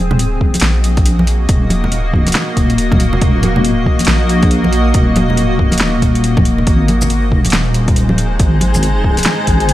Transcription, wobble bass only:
0.00 0.61 D#1 medium
0.62 1.47 A#1 medium
1.49 2.34 D#1 medium
2.57 3.20 D#1 loud
3.21 4.07 D#1 medium
4.08 4.93 A#1 loud
4.94 5.79 D#1 medium
5.80 6.66 D#1 loud
6.67 7.52 G#1 loud
7.53 8.38 D#1 medium
8.40 9.25 G#1 loud
9.47 9.73 G#1 loud

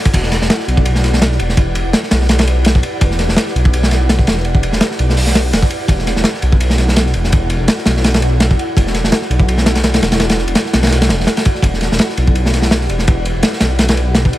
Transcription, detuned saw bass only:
0.14 0.40 E1 loud
0.42 0.49 E1 medium
0.68 1.38 B1 medium
1.40 1.84 E1 loud
1.86 1.93 E1 medium
2.12 2.82 B1 loud
3.01 3.28 E1 loud
3.29 3.37 E1 medium
3.55 4.26 B1 loud
4.27 4.71 E1 medium
4.73 4.80 E1 medium
4.99 5.52 B1 medium
5.53 5.62 E1 medium
5.88 6.15 E1 loud
6.17 6.24 E1 medium
6.43 7.13 B1 loud
7.14 7.59 E1 medium
7.60 7.68 E1 medium
7.86 8.57 B1 loud
8.77 9.03 E1 loud
9.04 9.11 E1 medium
9.30 10.01 B1 loud
10.02 10.46 E1 loud
10.48 10.55 E1 medium
10.74 10.91 B1 loud
10.92 11.11 B1 medium
11.10 11.19 E1 medium
11.20 11.27 E1 loud
11.63 11.89 E1 loud
11.91 11.99 E1 medium
12.17 12.88 B1 loud
12.89 13.34 E1 loud
13.35 13.42 E1 medium
13.61 14.32 B1 loud

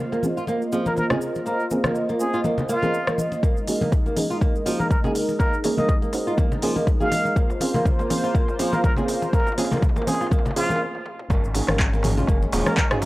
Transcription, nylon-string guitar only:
0.12 0.23 A#3 medium
0.37 0.43 F4 medium
0.48 0.60 A#3 medium
0.72 0.85 F3 loud
0.86 0.97 A#3 medium
1.11 1.17 G#4 medium
1.46 1.59 A#3 medium
1.85 1.95 A#3 medium
2.09 2.20 A#3 medium
2.34 2.40 F4 medium
2.44 2.57 A#3 medium
2.69 2.77 A#3 loud
2.83 2.93 A#4 medium
3.07 3.17 A#3 medium
3.43 3.55 A#3 medium
3.81 3.92 A#3 medium
4.06 4.16 A#3 medium
4.30 4.36 F4 medium
4.41 4.54 A#3 medium
4.66 4.78 F3 loud
4.80 4.90 A#3 medium
5.04 5.10 G#4 medium
5.39 5.52 A#3 medium
5.78 5.88 A#3 medium
6.02 6.13 A#3 medium
6.27 6.33 F4 medium
6.38 6.50 A#3 medium
6.63 6.75 F3 loud
6.76 6.87 A#3 medium
7.00 7.07 G#4 medium
7.36 7.49 A#3 medium
7.74 7.85 A#3 medium
7.99 8.10 A#3 medium
8.24 8.30 F4 medium
8.34 8.47 A#3 medium
8.59 8.72 F3 loud
8.73 8.84 A#3 medium
8.97 9.03 G#4 medium
9.33 9.45 A#3 medium
9.71 9.82 A#3 medium
9.96 10.06 A#3 medium
10.21 10.27 F4 medium
10.32 10.44 A#3 medium
10.56 10.69 F3 loud
10.70 10.80 A#3 medium
11.30 11.42 A#3 medium
11.68 11.79 A#3 medium
11.93 12.03 A#3 medium
12.18 12.23 F4 medium
12.28 12.41 A#3 medium
12.53 12.65 F3 loud
12.67 12.77 A#3 medium
12.91 12.97 G#4 medium

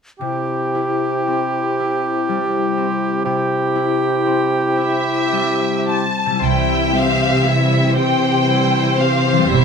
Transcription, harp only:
0.21 3.24 C3 soft
0.75 1.78 E4 soft
1.27 2.76 C4 soft
1.80 3.74 E4 soft
2.29 5.31 G3 soft
2.78 4.25 C4 soft
3.25 6.25 C3 soft
3.75 4.77 E4 soft
4.26 5.87 C4 soft
4.78 6.33 E4 soft
5.32 6.29 G3 soft
5.88 9.65 C4 soft
6.26 9.45 C3 soft
6.30 9.35 G3 soft
6.35 9.40 E4 soft
6.39 9.44 C5 soft
9.32 9.65 E3 soft
9.37 9.65 G3 soft
9.41 9.65 E4 soft
9.46 9.65 C5 soft

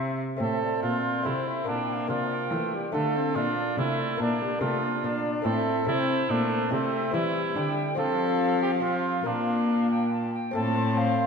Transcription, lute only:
0.00 0.17 C3 medium
0.00 0.36 C4 soft
0.00 0.36 E4 soft
0.36 0.79 A2 soft
0.36 1.21 A3 soft
0.36 1.21 C4 soft
0.36 1.22 E5 soft
0.83 1.21 A#2 soft
1.22 1.64 C3 soft
1.22 1.65 A3 soft
1.22 1.64 C4 soft
1.22 1.66 E4 soft
1.64 2.06 A#2 soft
1.64 2.06 A#3 soft
1.64 2.07 D4 soft
2.07 2.48 C3 soft
2.07 2.90 A#3 soft
2.07 2.91 D4 soft
2.52 2.90 E3 soft
2.92 3.32 D3 soft
2.92 3.34 A3 soft
2.92 3.34 D4 soft
3.35 3.75 A#2 soft
3.35 3.76 A3 soft
3.35 4.17 D4 soft
3.78 4.16 C3 soft
4.17 4.58 A#2 soft
4.17 4.58 A#3 soft
4.17 4.59 D4 soft
4.59 5.00 C3 soft
4.59 5.42 A#3 soft
4.59 5.42 D4 soft
5.04 5.42 A#2 soft
5.42 5.84 A2 soft
5.42 5.83 A3 soft
5.42 5.84 C4 soft
5.42 5.85 E4 soft
5.84 6.68 A3 soft
5.84 6.68 C4 soft
5.84 6.69 E4 soft
5.89 6.26 C3 soft
6.31 6.68 A#2 soft
6.69 7.10 C3 soft
6.69 7.10 C4 soft
6.69 7.12 E4 soft
7.11 7.52 E3 medium
7.11 7.94 C4 soft
7.11 7.95 E4 soft
7.56 7.94 D3 soft
7.95 9.22 F3 medium
7.95 8.79 C4 soft
7.95 8.80 F4 soft
8.80 9.23 C4 soft
8.80 9.23 F4 soft
9.23 10.30 A#2 soft
9.23 10.50 A#3 soft
9.23 10.50 F4 soft
10.51 11.27 A2 medium
10.51 11.27 C4 medium
10.51 11.27 A4 medium

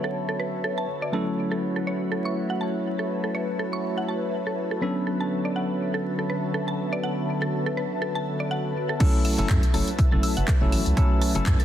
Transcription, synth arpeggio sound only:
0.04 0.08 A4 medium
0.29 0.39 A4 medium
0.40 0.45 B4 medium
0.64 0.73 A4 medium
0.78 0.85 A5 loud
1.02 1.09 D5 medium
1.13 1.26 A5 medium
1.51 1.56 A4 medium
1.76 1.86 A4 medium
1.87 1.92 C#5 medium
2.12 2.20 A4 medium
2.25 2.32 C#6 loud
2.50 2.57 F#5 medium
2.61 2.74 A5 medium
2.99 3.03 A4 medium
3.24 3.34 A4 medium
3.35 3.40 C#5 medium
3.59 3.68 A4 medium
3.73 3.80 C#6 loud
3.98 4.04 F#5 medium
4.08 4.21 A5 medium
4.47 4.51 A4 medium
4.71 4.82 A4 medium
4.82 4.87 B4 medium
5.07 5.15 A4 medium
5.20 5.27 A5 medium
5.45 5.52 D5 medium
5.56 5.69 F#5 medium
5.94 5.98 A4 medium
6.19 6.29 A4 medium
6.30 6.35 B4 medium
6.54 6.63 A4 medium
6.68 6.75 A5 loud
6.93 6.99 D5 medium
7.03 7.16 F#5 medium
7.42 7.46 A4 medium
7.66 7.77 A4 medium
7.77 7.82 B4 medium
8.02 8.10 A4 medium
8.15 8.22 A5 loud
8.40 8.47 D5 medium
8.51 8.64 F#5 medium
8.89 8.93 A4 medium
9.00 9.05 A4 medium
9.25 9.33 E5 medium
9.74 9.83 A5 loud
9.99 10.11 E6 medium
10.12 10.19 A4 medium
10.23 10.32 E6 loud
10.37 10.47 F#5 medium
10.48 10.53 A4 medium
10.72 10.81 E5 medium
11.22 11.30 A5 loud
11.46 11.59 E6 medium
11.60 11.65 A4 medium

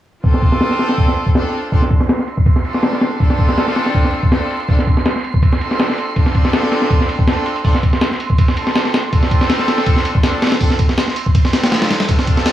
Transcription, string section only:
0.24 1.33 C4 loud
0.24 1.33 D4 medium
0.24 1.33 F4 medium
0.24 1.33 A4 loud
1.35 1.70 C4 medium
1.35 1.70 D4 medium
1.35 1.70 F4 medium
1.35 1.70 A4 medium
1.72 1.78 C4 medium
1.72 1.78 D4 medium
1.72 1.78 F4 medium
1.72 1.78 A4 medium
2.65 3.18 C4 medium
2.65 3.18 D4 medium
2.65 3.18 F4 medium
2.65 3.18 A4 medium
3.19 4.29 C4 loud
3.19 4.29 D4 medium
3.19 4.29 F4 medium
3.19 4.29 A4 loud
4.31 4.66 C4 medium
4.31 4.66 D4 medium
4.31 4.66 F4 medium
4.31 4.66 A4 medium
4.68 4.74 C4 medium
4.68 4.74 D4 medium
4.68 4.74 F4 medium
4.68 4.74 A4 medium
5.61 6.14 C4 medium
5.61 6.14 D4 medium
5.61 6.14 F4 medium
5.61 6.14 A4 medium
6.16 7.25 C4 loud
6.16 7.25 D4 medium
6.16 7.25 F4 medium
6.16 7.25 A4 loud
7.27 7.62 C4 medium
7.27 7.62 D4 medium
7.27 7.62 F4 medium
7.27 7.62 A4 medium
7.64 7.70 C4 medium
7.64 7.70 D4 medium
7.64 7.70 F4 medium
7.64 7.70 A4 medium
8.57 9.10 C4 medium
8.57 9.10 D4 medium
8.57 9.10 F4 medium
8.57 9.10 A4 medium
9.12 10.21 C4 loud
9.12 10.21 D4 medium
9.12 10.21 F4 medium
9.12 10.21 A4 loud
10.23 10.59 C4 medium
10.23 10.59 D4 medium
10.23 10.59 F4 medium
10.23 10.59 A4 medium
10.60 10.66 C4 medium
10.60 10.66 D4 medium
10.60 10.66 F4 medium
10.60 10.66 A4 medium
11.53 12.07 C4 medium
11.53 12.07 D4 medium
11.53 12.07 F4 medium
11.53 12.07 A4 medium
12.09 12.52 C4 loud
12.09 12.52 D4 medium
12.09 12.52 F4 medium
12.09 12.52 A4 loud

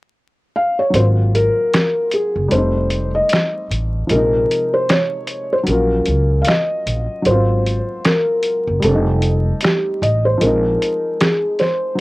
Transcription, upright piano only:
0.90 2.47 F#3 medium
0.90 2.48 A#3 medium
0.96 2.50 C4 medium
0.96 2.51 F4 medium
2.48 4.05 G3 medium
2.48 4.06 A3 medium
2.54 4.08 C4 medium
2.54 4.09 D#4 medium
4.07 5.63 F3 medium
4.07 5.64 G#3 medium
4.13 5.66 C3 medium
4.13 5.67 D#4 medium
5.63 7.20 F#3 medium
5.63 7.21 A#3 medium
5.69 7.23 C#4 medium
5.69 7.24 F4 medium
7.22 8.78 F#3 medium
7.22 8.80 A#3 medium
7.28 7.34 B3 soft
7.28 8.83 F4 medium
7.34 8.84 C4 medium
8.80 10.36 G3 medium
8.80 10.38 A3 medium
8.85 10.39 C4 medium
8.85 8.93 D4 medium
8.95 10.44 D#4 medium
10.38 11.94 F3 medium
10.38 11.95 G#3 medium
10.44 11.97 C4 medium
10.44 11.98 D#4 medium
11.95 12.00 F#3 medium

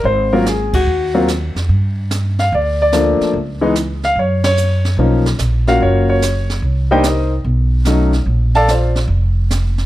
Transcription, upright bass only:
0.04 0.82 G#1 medium
0.86 1.51 D#2 medium
1.55 1.68 F2 medium
1.69 2.47 G2 medium
2.52 3.17 D2 medium
3.20 muted upright bass stroke soft
3.33 4.12 C#2 medium
4.15 4.94 F#2 medium
4.97 5.36 B1 medium
5.39 5.77 A#1 medium
5.80 6.58 F#1 medium
6.62 7.40 C2 medium
7.44 8.23 B1 medium
8.26 9.04 A#1 medium
9.08 9.86 F1 medium

